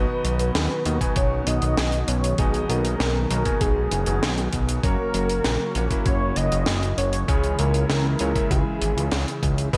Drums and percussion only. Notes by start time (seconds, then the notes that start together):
0.25 closed hi-hat
0.39 closed hi-hat
0.55 snare, closed hi-hat
0.86 closed hi-hat
1.01 kick, closed hi-hat
1.16 kick, closed hi-hat
1.47 closed hi-hat
1.62 closed hi-hat
1.78 snare, closed hi-hat
1.92 closed hi-hat
2.08 closed hi-hat
2.24 closed hi-hat
2.38 kick, closed hi-hat
2.54 closed hi-hat
2.70 closed hi-hat
2.85 closed hi-hat
3.00 snare, closed hi-hat
3.31 closed hi-hat
3.45 kick, closed hi-hat
3.61 kick, closed hi-hat
3.92 closed hi-hat
4.06 closed hi-hat
4.23 snare, closed hi-hat
4.38 closed hi-hat
4.53 kick, closed hi-hat
4.69 closed hi-hat
4.83 kick, closed hi-hat
5.14 closed hi-hat
5.29 closed hi-hat
5.44 snare, closed hi-hat
5.75 closed hi-hat
5.91 kick, closed hi-hat
6.06 kick, closed hi-hat
6.36 closed hi-hat
6.52 closed hi-hat
6.66 snare, closed hi-hat
6.83 closed hi-hat
6.98 closed hi-hat
7.13 closed hi-hat
7.28 kick, closed hi-hat
7.44 closed hi-hat
7.59 closed hi-hat
7.74 closed hi-hat
7.90 snare, closed hi-hat
8.19 closed hi-hat
8.36 kick, closed hi-hat
8.51 kick, closed hi-hat
8.82 closed hi-hat
8.98 closed hi-hat
9.12 snare, closed hi-hat
9.28 closed hi-hat
9.43 kick, closed hi-hat
9.58 closed hi-hat
9.73 kick, closed hi-hat